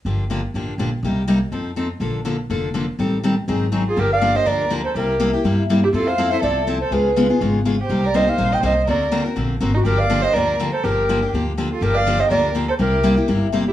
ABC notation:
X:1
M:4/4
L:1/8
Q:"Swing" 1/4=245
K:Gm
V:1 name="Clarinet"
z8 | z8 | z8 | z6 z _A |
B f2 e d2 z c | B4 z3 G | A f2 =e d2 z c | =B4 z3 c- |
c d e f2 g e2 | d3 z4 ^F | B f2 e d2 z c | B4 z3 A |
B f2 e d2 z c | B4 z3 G |]
V:2 name="Violin"
z8 | z8 | z8 | z6 z F |
G d2 c B2 z A | G4 z3 =E | F c2 c A2 z A | ^G4 z3 =G- |
G B c c2 e c2 | ^A3 z4 E | G d2 c B2 z A | G4 z3 F |
G d2 c B2 z A | G4 z3 =E |]
V:3 name="Steel-string acoustic guitar"
[D,F,B,DG] z [D,F,B,DG] z [D,F,B,DG] z [D,F,B,DG] z | [C,G,B,EG] z [C,G,B,EG] z [F,CEA] z [F,CEA] z | [D,F,B,DA] z [D,F,B,DA] z [D,F,B,DA] z [D,F,B,DA] z | [E,G,CGA] z [E,G,CGA] z [E,_G,CE_A] z [E,G,CEA] z |
[D,F,B,DG] z [D,F,B,DG] [B,DG] [D,F,B,DG] z [D,F,B,DG] z | [C,G,B,=EG] z [C,G,B,EG] [B,EG] [C,G,B,EG] z [C,G,B,EG] z | [F,C=EA] z [F,CEA] [CEA] [F,CEA] z [F,CEA] z | [^C,^G,=B,^E^G] z [C,G,B,EG] [B,EG] [C,G,B,EG] z [C,G,B,EG] z |
[C,G,B,EG] z [C,G,B,EG] [B,EG] [C,G,B,EG] z [C,G,B,EG] z | [D,^A,C^F^A] z [D,A,CFA] [CFA] [D,A,CFA] z [D,A,CFA] z | [D,F,B,DG] z [D,F,B,DG] [B,DG] [D,F,B,DG] z [D,F,B,DG] z | [D,F,B,DG] z [D,F,B,DG] [B,D] [D,F,B,DG] z [D,F,B,DG] z |
[D,F,B,DG] z [D,F,B,DG] [B,DG] [D,F,B,DG] z [D,F,B,DG] z | [C,G,B,=EG] z [C,G,B,EG] [B,EG] [C,G,B,EG] z [C,G,B,EG] z |]
V:4 name="Upright bass" clef=bass
G,,,4 A,,,2 B,,,2 | C,,4 F,,4 | B,,,4 F,,,4 | A,,,4 _A,,,4 |
G,,,4 D,,4 | C,,4 G,,4 | F,,4 C,,4 | ^C,,4 ^G,,,4 |
C,,4 B,,,2 C,,2 | D,,4 ^A,,,2 _A,,,2 | G,,,4 D,,4 | G,,,4 D,,4 |
G,,,4 D,,4 | C,,4 G,,,4 |]